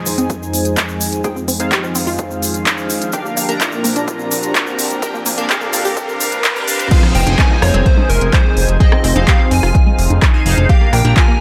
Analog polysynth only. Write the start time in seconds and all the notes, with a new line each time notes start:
Already playing: D#4 G#4 C5 G#5
1.24 D#4 G#4 C5 G5
1.60 D#4 G#4 C5 F5
3.13 D4 G4 A#4 F5
3.49 D4 G4 A#4 A#5
5.02 D4 G4 A#4 G5
5.38 D4 G4 A#4 F5
6.56 D4 G4 A#4 A#5
6.68 D4 G4 A#4 F5
6.91 D#4 G#4 C5 F5
7.27 D#4 G#4 C5 G#5
8.80 D#4 G#4 C5 G5
9.16 D#4 G#4 C5 F5
10.34 D#4 G#4 C5 G#5
10.46 D#4 G#4 C5 F5
10.69 D4 G4 A#4 F5
11.05 D4 G4 A#4 A#5